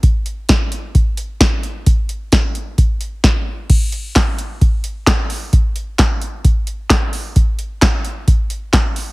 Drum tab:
CC |--------|--------|x-------|--------|
HH |xxxxxxxx|xxxxxx--|xxxxxxxo|xxxxxxxo|
CP |--------|--------|--x---x-|--x---x-|
SD |--o---o-|--o---o-|--o---o-|--o---o-|
BD |o-o-o-o-|o-o-o-o-|o-o-o-o-|o-o-o-o-|

CC |--------|
HH |xxxxxxxo|
CP |--x---x-|
SD |--o---o-|
BD |o-o-o-o-|